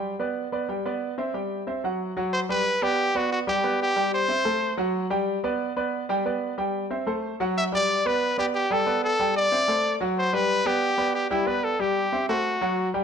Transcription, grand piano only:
X:1
M:4/4
L:1/8
Q:1/4=184
K:G
V:1 name="Grand piano"
[G,Gg] [B,Bd]2 [B,Bd] [G,Gg] [B,Bd]2 [Cce] | [G,Gg]2 [Cce] [F,Ff]2 [F,Ff]2 [G,Gg] | z [B,Bd]2 [B,Bd]2 [G,Gg] [B,Bd]2 | [G,Gg]2 [Cce] [A,Ac]2 [F,Ff]2 [G,Gg]- |
[G,Gg] [B,Bd]2 [B,Bd]2 [G,Gg] [B,Bd]2 | [G,Gg]2 [Cce] [A,Ac]2 [F,Ff]2 [G,Gg]- | [G,Gg] [B,Bd]2 [B,Bd]2 [G,Gg] [B,Bd]2 | [G,Gg]2 [Cce] [A,Ac]2 [F,Ff]2 [G,Gg]- |
[G,Gg] [B,Bd]2 [B,Bd]2 [G,Gg] [B,Bd]2 | [G,Gg]2 [Cce] [A,Ac]2 [F,Ff]2 [G,Gg] |]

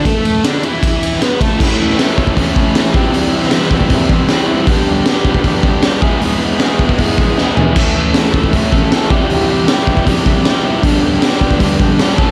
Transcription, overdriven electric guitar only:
X:1
M:4/4
L:1/8
Q:1/4=156
K:Glyd
V:1 name="Overdriven electric guitar"
[A,A]2 [D,D] [E,E]3 [B,B] [A,A] | [A,,E,A,CE] [A,CE] [E,A,CE]2 [A,,E,A,CE] [A,CE] [E,A,CE] [=C,E,G,=CE] | [=C,E,G,=CE] [G,CE] [E,G,CE]2 [C,E,G,CE] [G,CE] [E,G,CE] [G,CE] | [G,,D,G,B,DG] [G,B,DG] [G,B,DG]2 [G,,D,G,B,DG] [G,B,DG] [G,B,DG] [^G,B,E^G] |
[^G,B,E^G] [B,EG] [G,B,EG]2 [G,B,EG] [B,EG] [G,B,EG] [B,EG] | [A,,E,A,CA] [A,CA] [E,A,CA]2 [A,,E,A,CA] [A,CA] [E,A,CA] [=C,E,G,EG] | [=C,E,G,EG] [G,EG] [E,G,EG]2 [C,E,G,EG] [G,EG] [E,G,EG] [G,EG] | [G,,D,G,B,DG] [G,B,DG] [G,B,DG]2 [G,,D,G,B,DG] [G,B,DG] [G,B,DG] [A,,E,A,CA] |]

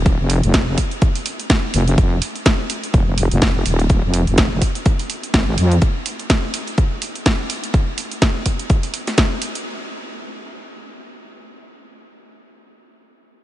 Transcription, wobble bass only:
X:1
M:4/4
L:1/16
Q:"Swing 16ths" 1/4=125
K:Fm
V:1 name="Wobble bass" clef=bass
E,,, F,,,2 F,,,3 z8 F,,,2 | F,,,2 z6 F,,,3 F,,, F,,,2 E,,,2- | E,,, F,,,2 F,,,3 z6 A,,,2 F,,2 | z16 |
z16 | z16 | z16 |]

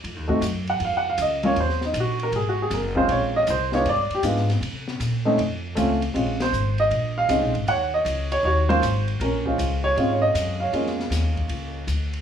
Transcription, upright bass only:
X:1
M:4/4
L:1/8
Q:"Swing" 1/4=157
K:Bbm
V:1 name="Upright bass" clef=bass
(3F,, E,, C,, G,,2 F,,2 D,,2 | E,,2 B,,,2 A,,,2 G,,,2 | B,,,2 C,,2 =G,, z A,,2 | C,2 B,,2 F,,2 D,,2 |
B,,,2 A,,,2 B,,,2 (3C,, B,,, A,,, | E,,2 D,,2 E,,2 A,,,2 | B,,,2 D,,2 A,,2 G,,2 | F,,2 E,,2 D,,2 =D,,2 |]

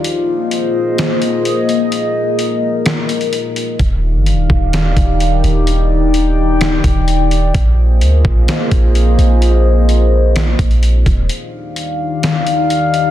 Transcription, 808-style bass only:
X:1
M:4/4
L:1/16
Q:1/4=128
K:Eb
V:1 name="808-style bass" clef=bass
z16 | z16 | E,,,3 G,,,3/2 E,,,3/2 E,,,4 E,,,4 E,,,2- | E,,,8- E,,,2 E,,,6 |
B,,,4 D,,2 B,,,2 z2 B,,,4 B,,,2- | B,,,8- B,,,2 B,,,4 E,,,2 | z16 |]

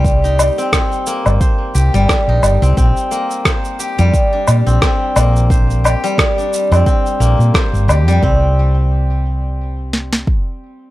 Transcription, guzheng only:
X:1
M:4/4
L:1/16
Q:"Swing 16ths" 1/4=88
K:Bbmix
V:1 name="Guzheng"
G, E2 C C z B, z c z G G,2 E2 C | C z B, z c z G G,2 D2 C C z B, z | c z G G,2 D2 C C z B, z c z G G, | C2 z12 z2 |]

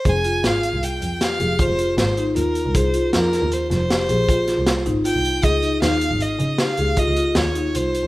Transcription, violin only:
X:1
M:7/4
L:1/8
Q:1/4=156
K:Fm
V:1 name="Violin"
a2 f2 g2 f2 c2 c2 B2 | c2 B2 c c6 z g2 | e2 f2 e2 f2 e2 d2 c2 |]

